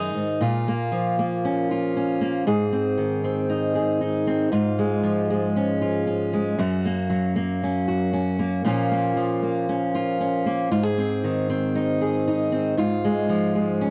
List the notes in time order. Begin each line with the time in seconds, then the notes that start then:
Already playing: F#2 D#3 D#4 G#4
0.15 G#2
0.41 A#2 F4
0.68 A#3
0.92 F3
1.19 A#3
1.45 C#4
1.71 F4
1.97 C#4
2.21 A#3
2.47 G#2 G#4
2.72 C4
2.98 D#3
3.24 C4
3.49 D#4
3.75 G#4
4.01 D#4
4.27 C4
4.52 G#2 F4
4.79 G#3
5.03 F3
5.30 G#3
5.56 C#4
5.81 F4
6.07 C#4
6.33 G#3
6.58 F#2 F#4
6.85 A#3
7.10 F#3
7.36 A#3
7.63 C#4
7.88 F#4
8.13 C#4
8.39 A#3
8.65 A#2 F3 A#3 C#4 F4
8.92 A#3
9.17 F3
9.43 A#3
9.69 C#4
9.95 F4
10.20 C#4
10.46 A#3
10.72 G#2 F4
10.83 G#4
10.98 C4
11.24 D#3
11.50 C4
11.75 D#4
12.01 G#4
12.28 D#4
12.52 C4
12.77 G#2 F4
13.05 G#3
13.29 F3
13.55 G#3
13.81 C#4